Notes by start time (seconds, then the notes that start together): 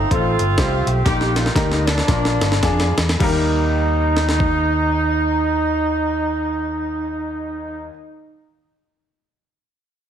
Already playing: A3 C4 D#4
0.11 A1 A3 C4 F4 A4, kick, closed hi-hat
0.39 G1, closed hi-hat
0.57 C2 C4 F4 G4, kick, snare, closed hi-hat
0.86 B1 G4, closed hi-hat
1.05 A#1 A#2 A#3 D#4 G4 A#4, kick, snare, closed hi-hat
1.21 snare
1.34 F4, snare, closed hi-hat
1.46 snare
1.54 D2 D#4 G4 A#4, kick, snare, closed hi-hat
1.72 snare
1.86 F3 A#3 D4, snare, closed hi-hat
1.98 snare
2.07 A#1 A#2 D4 F4 A#4, kick, snare, closed hi-hat
2.25 snare
2.40 G1, snare, closed hi-hat
2.52 snare
2.62 F2 D4 F4 G#4, kick, snare, closed hi-hat
2.80 snare
2.97 E2, snare, closed hi-hat
3.09 snare
3.19 D#2 G3 A#3 D#4, kick, crash
3.24 A#4
4.17 snare
4.29 snare
4.40 kick